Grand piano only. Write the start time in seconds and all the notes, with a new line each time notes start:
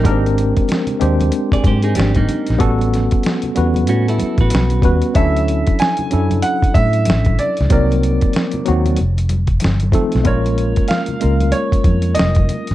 5.16 E5
5.80 G#5
6.43 F#5
6.74 E5
7.39 D5
7.72 D5
10.27 C#5
10.88 F5
11.52 C#5
12.15 D#5